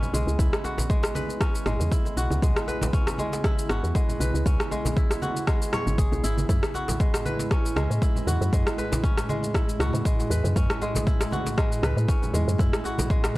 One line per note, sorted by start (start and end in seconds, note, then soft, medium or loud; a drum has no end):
0.00 6.45 C#3 medium
0.00 0.12 G#3 medium
0.00 6.45 B3 medium
0.00 1.40 C#4 medium
0.00 0.39 E4 medium
0.00 13.38 E4 medium
0.00 0.58 F#4 medium
0.00 0.86 B4 medium
0.00 muted conga medium
0.00 low conga medium
0.00 shaker soft
0.13 0.25 B1 loud
0.13 0.88 G#3 medium
0.13 high conga medium
0.13 shaker medium
0.27 0.37 C#2 medium
0.27 shaker soft
0.39 0.50 C#2 loud
0.39 1.91 E4 medium
0.39 kick loud
0.39 muted conga soft
0.39 djembe tone medium
0.39 low conga medium
0.39 shaker medium
0.53 cross-stick medium
0.53 shaker medium
0.64 2.11 F#4 medium
0.64 djembe tone loud
0.64 shaker medium
0.78 djembe slap medium
0.78 high conga medium
0.78 low conga medium
0.78 djembe bass medium
0.78 shaker medium
0.90 1.65 G#3 medium
0.90 kick loud
0.90 shaker soft
1.03 cross-stick medium
1.03 djembe slap medium
1.03 djembe tone medium
1.03 shaker medium
1.15 2.38 B4 medium
1.15 djembe tone medium
1.15 high conga loud
1.15 shaker medium
1.29 muted conga medium
1.29 shaker medium
1.41 2.93 C#4 medium
1.41 kick loud
1.41 cross-stick medium
1.41 shaker medium
1.55 shaker medium
1.66 1.78 G#1 loud
1.66 2.41 G#3 medium
1.66 cross-stick medium
1.66 muted conga soft
1.66 low conga medium
1.66 shaker medium
1.80 1.89 E2 medium
1.80 high conga medium
1.80 shaker medium
1.92 3.44 E4 medium
1.92 kick loud
1.92 shaker medium
2.05 muted conga medium
2.05 djembe tone medium
2.05 shaker medium
2.17 2.28 B1 loud
2.17 3.63 F#4 medium
2.17 shaker medium
2.30 2.40 C#2 medium
2.30 high conga loud
2.30 shaker soft
2.42 2.54 C#2 loud
2.42 3.18 G#3 medium
2.42 kick loud
2.42 muted conga soft
2.42 djembe tone medium
2.42 low conga medium
2.42 shaker medium
2.56 cross-stick medium
2.56 shaker medium
2.68 3.91 B4 medium
2.68 djembe tone medium
2.68 shaker medium
2.81 djembe slap medium
2.81 high conga medium
2.81 low conga loud
2.81 djembe bass medium
2.81 shaker medium
2.93 4.45 C#4 medium
2.93 kick loud
2.93 muted conga soft
2.93 shaker medium
3.06 cross-stick medium
3.06 djembe slap medium
3.06 djembe tone medium
3.06 shaker medium
3.18 3.94 G#3 medium
3.18 high conga loud
3.18 djembe tone medium
3.18 shaker medium
3.32 muted conga soft
3.32 djembe slap medium
3.32 shaker medium
3.44 4.96 E4 medium
3.44 kick loud
3.44 cross-stick medium
3.44 shaker medium
3.59 shaker medium
3.69 3.81 G#1 loud
3.69 5.16 F#4 medium
3.69 cross-stick medium
3.69 muted conga soft
3.69 high conga medium
3.69 shaker medium
3.83 3.93 E2 medium
3.83 shaker medium
3.95 4.70 G#3 medium
3.95 kick loud
3.95 djembe tone medium
3.95 shaker medium
4.09 muted conga soft
4.09 low conga medium
4.09 shaker medium
4.20 4.32 B1 medium
4.20 5.43 B4 medium
4.20 high conga medium
4.20 shaker medium
4.34 4.44 C#2 medium
4.34 shaker medium
4.46 4.57 C#2 loud
4.46 6.20 C#4 medium
4.46 kick loud
4.46 muted conga medium
4.46 djembe tone medium
4.46 low conga medium
4.46 shaker medium
4.60 cross-stick medium
4.60 shaker medium
4.71 5.46 G#3 medium
4.71 djembe tone medium
4.71 shaker medium
4.85 djembe slap medium
4.85 high conga medium
4.85 djembe bass medium
4.85 low conga medium
4.85 shaker medium
4.97 6.23 E4 medium
4.97 kick loud
4.97 muted conga soft
4.97 shaker medium
5.10 cross-stick medium
5.10 djembe slap medium
5.10 djembe tone medium
5.10 shaker medium
5.22 6.68 F#4 medium
5.22 djembe tone medium
5.22 high conga loud
5.22 shaker medium
5.36 muted conga soft
5.36 shaker medium
5.47 6.54 G#3 medium
5.47 kick loud
5.47 cross-stick medium
5.47 shaker medium
5.62 shaker medium
5.73 6.87 C#5 loud
5.73 cross-stick medium
5.73 muted conga soft
5.73 low conga medium
5.73 shaker medium
5.87 6.07 G#1 medium
5.87 high conga medium
5.87 shaker medium
5.98 7.34 G#4 medium
5.98 kick loud
5.98 shaker medium
6.12 6.22 B1 medium
6.12 muted conga medium
6.12 djembe tone medium
6.12 shaker medium
6.24 6.45 G#1 medium
6.24 6.49 E4 medium
6.24 shaker medium
6.38 high conga loud
6.38 shaker medium
6.49 6.61 F#2 loud
6.49 13.38 A2 medium
6.49 13.38 G#3 medium
6.49 8.01 E4 medium
6.49 kick loud
6.49 muted conga soft
6.49 djembe tone medium
6.49 low conga medium
6.49 shaker medium
6.63 cross-stick medium
6.63 shaker medium
6.74 8.21 F#4 medium
6.74 djembe tone medium
6.74 shaker medium
6.88 djembe slap medium
6.88 high conga medium
6.88 djembe bass medium
6.88 low conga loud
6.88 shaker medium
6.99 7.75 G#3 medium
6.99 kick loud
6.99 muted conga soft
6.99 shaker medium
7.14 cross-stick medium
7.14 djembe slap medium
7.14 djembe tone medium
7.14 shaker medium
7.25 8.48 B4 medium
7.25 djembe tone medium
7.25 high conga medium
7.25 shaker medium
7.39 djembe slap medium
7.39 muted conga soft
7.39 shaker medium
7.51 9.03 C#4 medium
7.51 kick loud
7.51 cross-stick medium
7.51 shaker medium
7.66 shaker medium
7.76 7.88 C#2 loud
7.76 8.52 G#3 medium
7.76 cross-stick medium
7.76 muted conga soft
7.76 high conga medium
7.76 shaker medium
7.90 8.00 A2 medium
7.90 shaker medium
8.02 9.54 E4 medium
8.02 kick loud
8.02 djembe tone medium
8.02 shaker medium
8.16 muted conga soft
8.16 low conga medium
8.16 shaker medium
8.27 8.39 E2 medium
8.27 9.73 F#4 medium
8.27 high conga medium
8.27 shaker medium
8.41 8.51 F#2 medium
8.41 shaker soft
8.53 8.64 F#2 loud
8.53 9.28 G#3 medium
8.53 kick loud
8.53 muted conga soft
8.53 djembe tone medium
8.53 low conga medium
8.53 shaker medium
8.67 cross-stick medium
8.67 shaker medium
8.78 10.01 B4 medium
8.78 djembe tone medium
8.78 shaker soft
8.92 djembe slap medium
8.92 high conga medium
8.92 low conga medium
8.92 djembe bass medium
8.92 shaker medium
9.03 10.56 C#4 medium
9.03 kick loud
9.03 muted conga soft
9.03 shaker soft
9.18 cross-stick medium
9.18 djembe slap medium
9.18 djembe tone medium
9.18 shaker medium
9.29 10.04 G#3 medium
9.29 djembe tone medium
9.29 high conga loud
9.29 shaker soft
9.43 muted conga soft
9.43 shaker soft
9.54 11.07 E4 medium
9.54 kick loud
9.54 cross-stick medium
9.54 shaker soft
9.69 shaker medium
9.80 9.91 C#2 loud
9.80 11.26 F#4 medium
9.80 cross-stick medium
9.80 muted conga soft
9.80 low conga medium
9.80 shaker soft
9.93 10.03 A2 medium
9.93 high conga medium
9.93 shaker soft
10.05 10.80 G#3 medium
10.05 kick loud
10.05 shaker medium
10.19 muted conga medium
10.19 djembe tone medium
10.19 shaker soft
10.30 10.42 E2 loud
10.30 11.54 B4 medium
10.30 shaker medium
10.44 10.54 F#2 medium
10.44 high conga medium
10.44 shaker soft
10.56 10.67 F#2 loud
10.56 12.08 C#4 medium
10.56 kick loud
10.56 muted conga soft
10.56 djembe tone medium
10.56 low conga medium
10.56 shaker medium
10.70 cross-stick medium
10.70 shaker soft
10.81 11.56 G#3 medium
10.81 djembe tone medium
10.81 shaker soft
10.95 djembe slap medium
10.95 high conga medium
10.95 low conga medium
10.95 djembe bass medium
10.95 shaker medium
11.07 12.59 E4 medium
11.07 kick loud
11.07 muted conga soft
11.07 shaker soft
11.21 cross-stick medium
11.21 djembe slap medium
11.21 djembe tone medium
11.21 shaker medium
11.31 12.78 F#4 medium
11.31 djembe tone medium
11.31 high conga loud
11.31 shaker soft
11.46 muted conga medium
11.46 djembe slap medium
11.46 shaker soft
11.58 12.33 G#3 medium
11.58 kick loud
11.58 cross-stick medium
11.58 shaker soft
11.72 shaker medium
11.83 11.94 C#2 loud
11.83 13.06 B4 medium
11.83 cross-stick medium
11.83 muted conga soft
11.83 high conga medium
11.83 shaker soft
11.97 12.06 A2 medium
11.97 shaker medium
12.08 13.38 C#4 medium
12.08 kick loud
12.08 djembe tone medium
12.08 shaker medium
12.22 muted conga soft
12.22 low conga medium
12.22 shaker soft
12.34 12.45 E2 loud
12.34 13.09 G#3 medium
12.34 high conga medium
12.34 shaker medium
12.48 12.57 F#2 medium
12.48 shaker soft
12.58 12.71 F#2 loud
12.58 13.38 E4 medium
12.58 kick loud
12.58 muted conga medium
12.58 djembe tone medium
12.58 low conga medium
12.58 shaker medium
12.73 cross-stick medium
12.73 shaker medium
12.84 13.38 F#4 medium
12.84 djembe tone medium
12.84 shaker soft
12.98 djembe slap medium
12.98 high conga medium
12.98 djembe bass medium
12.98 low conga loud
12.98 shaker medium
13.10 13.38 G#3 medium
13.10 kick loud
13.10 muted conga soft
13.10 shaker medium
13.24 cross-stick medium
13.24 djembe slap medium
13.24 djembe tone medium
13.24 shaker medium